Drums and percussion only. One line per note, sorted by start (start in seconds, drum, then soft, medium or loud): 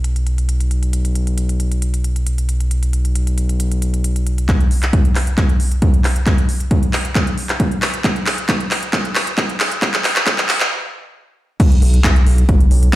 0.04 closed hi-hat medium
0.16 closed hi-hat soft
0.27 closed hi-hat medium
0.38 closed hi-hat soft
0.49 closed hi-hat medium
0.60 closed hi-hat soft
0.71 closed hi-hat medium
0.83 closed hi-hat soft
0.93 closed hi-hat medium
1.05 closed hi-hat soft
1.15 closed hi-hat medium
1.27 closed hi-hat soft
1.38 closed hi-hat medium
1.49 closed hi-hat medium
1.60 closed hi-hat medium
1.72 closed hi-hat soft
1.82 closed hi-hat medium
1.94 closed hi-hat medium
2.04 closed hi-hat medium
2.16 closed hi-hat medium
2.27 closed hi-hat medium
2.38 closed hi-hat soft
2.49 closed hi-hat medium
2.60 closed hi-hat medium
2.71 closed hi-hat medium
2.83 closed hi-hat medium
2.93 closed hi-hat medium
3.05 closed hi-hat medium
3.15 closed hi-hat medium
3.27 closed hi-hat medium
3.38 closed hi-hat medium
3.49 closed hi-hat medium
3.60 closed hi-hat medium
3.72 closed hi-hat medium
3.82 closed hi-hat medium
3.94 closed hi-hat medium
4.04 closed hi-hat medium
4.16 closed hi-hat medium
4.27 closed hi-hat medium
4.38 closed hi-hat medium
4.49 kick loud
4.49 clap soft
4.49 closed hi-hat medium
4.60 closed hi-hat medium
4.71 open hi-hat loud
4.83 clap soft
4.83 closed hi-hat medium
4.93 kick loud
4.93 closed hi-hat medium
5.05 closed hi-hat medium
5.15 clap medium
5.15 open hi-hat loud
5.27 closed hi-hat medium
5.38 kick loud
5.38 clap medium
5.38 closed hi-hat medium
5.49 closed hi-hat medium
5.60 open hi-hat loud
5.72 closed hi-hat medium
5.82 kick loud
5.82 closed hi-hat medium
5.94 closed hi-hat medium
6.04 clap medium
6.04 open hi-hat loud
6.16 closed hi-hat medium
6.26 kick loud
6.26 clap medium
6.26 closed hi-hat loud
6.38 closed hi-hat medium
6.49 open hi-hat loud
6.60 closed hi-hat medium
6.71 kick loud
6.71 closed hi-hat medium
6.83 closed hi-hat medium
6.93 clap medium
6.93 open hi-hat loud
7.05 closed hi-hat medium
7.15 kick loud
7.15 clap medium
7.15 closed hi-hat medium
7.27 closed hi-hat medium
7.38 open hi-hat loud
7.49 clap medium
7.49 closed hi-hat medium
7.60 kick loud
7.60 closed hi-hat loud
7.71 closed hi-hat medium
7.82 clap medium
7.82 open hi-hat loud
7.94 closed hi-hat medium
8.04 kick loud
8.04 clap medium
8.04 closed hi-hat medium
8.16 closed hi-hat medium
8.26 clap medium
8.26 open hi-hat loud
8.38 closed hi-hat medium
8.49 kick loud
8.49 clap medium
8.49 closed hi-hat medium
8.60 closed hi-hat medium
8.71 clap medium
8.71 open hi-hat loud
8.83 closed hi-hat medium
8.93 kick loud
8.93 clap medium
8.93 closed hi-hat medium
9.05 closed hi-hat medium
9.15 clap medium
9.15 open hi-hat loud
9.27 closed hi-hat medium
9.38 kick loud
9.38 clap medium
9.38 closed hi-hat medium
9.49 closed hi-hat medium
9.60 clap medium
9.60 open hi-hat loud
9.72 closed hi-hat medium
9.82 kick loud
9.82 clap medium
9.82 closed hi-hat medium
9.94 clap medium
9.94 closed hi-hat medium
10.04 clap medium
10.04 open hi-hat loud
10.16 clap medium
10.16 closed hi-hat medium
10.27 kick loud
10.27 clap medium
10.27 closed hi-hat medium
10.38 clap medium
10.38 closed hi-hat medium
10.49 clap loud
10.49 open hi-hat loud
10.60 clap medium
10.60 closed hi-hat medium
11.60 kick loud
11.60 closed hi-hat loud
11.60 crash loud
11.72 closed hi-hat medium
11.82 open hi-hat loud
11.94 closed hi-hat medium
12.04 kick loud
12.04 clap loud
12.04 closed hi-hat loud
12.16 closed hi-hat medium
12.27 open hi-hat medium
12.38 closed hi-hat medium
12.49 kick loud
12.49 closed hi-hat medium
12.60 closed hi-hat medium
12.71 open hi-hat loud
12.83 closed hi-hat medium